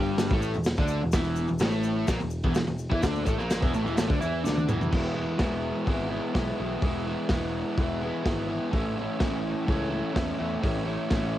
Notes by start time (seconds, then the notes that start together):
Already playing: G1 G2 G3
0.18 snare, open hi-hat, shaker
0.29 A1 A2 A3, kick, shaker
0.42 shaker
0.54 E1 E2, shaker
0.64 snare, open hi-hat, shaker
0.77 D2 D3 D4, kick, shaker
0.88 shaker
1.01 E1 E2
1.12 E1 E2 E3, kick, snare, open hi-hat, shaker
1.24 shaker
1.36 shaker
1.48 E1 E2, shaker
1.59 A1 A2 A3, snare, open hi-hat, shaker
1.71 shaker
1.83 shaker
2.08 A#1 A#2 A#3, kick, snare, open hi-hat, shaker
2.19 E1 E2, shaker
2.30 shaker
2.43 E1 E2 E3, kick, shaker
2.54 E1 E2, snare, open hi-hat, shaker
2.67 E1 E2, shaker
2.78 shaker
2.90 E2 E3 E4, kick
3.02 D2 D3 D4, kick, snare, open hi-hat, shaker
3.15 shaker
3.25 A1 A2 A3, kick, shaker
3.38 A#1 A#2 A#3, shaker
3.50 snare, open hi-hat, shaker
3.61 E1 E2 E3, kick, shaker
3.73 A1 A2 A3, shaker
3.84 E2 E3, shaker
3.88 E1
3.95 A2 A3, snare, open hi-hat, shaker
4.00 A1
4.08 D2 D3 D4, kick
4.19 E2 E3 E4, shaker
4.44 D3 D4, snare, shaker
4.48 D2
4.57 high tom, shaker
4.68 E1 E2 E3, mid tom, shaker
4.81 floor tom, shaker
4.91 E1 E3 G#3 B3, kick, crash
4.95 E4
5.15 B3 E4
5.19 G#3
5.38 E1 E3 G#3 B3, kick, snare, open hi-hat
5.42 E4
5.85 G#1 E3 G#3 B3, kick, open hi-hat
5.90 E4
6.09 B3 E4
6.13 G#3
6.33 B1 E3 G#3 B3 E4, kick, snare, open hi-hat
6.57 B1 B3 E4
6.62 G#3
6.82 E1 E3 G#3 B3, kick, open hi-hat
6.87 E4
7.07 G#3 B3 E4
7.29 E1 E3 G#3, kick, snare, open hi-hat
7.33 B3 E4
7.77 E1 E3 G#3 B3, kick, open hi-hat
7.82 E4
8.02 G#3 B3 E4
8.24 G#1 E3 G#3 B3, kick, snare, open hi-hat
8.29 E4
8.49 G#3 B3 E4
8.71 A1 A2 E3 A3 C#4, kick, open hi-hat
8.76 E4
8.97 C#4 E4
9.01 A3
9.19 A1 E3 A3 C#4 E4, kick, snare, open hi-hat
9.66 C#2 A2 E3 A3 C#4, kick, open hi-hat
9.71 E4
9.90 C#4 E4
9.95 A3
10.13 E2 E3 A3 C#4, kick, snare, open hi-hat
10.18 E4
10.38 E2 A3 C#4 E4
10.60 A2 E3 A3 C#4, kick
10.64 A1 E4, open hi-hat
10.83 C#4 E4
10.88 A3
11.09 A1 E3 A3 C#4, kick, snare, open hi-hat
11.14 E4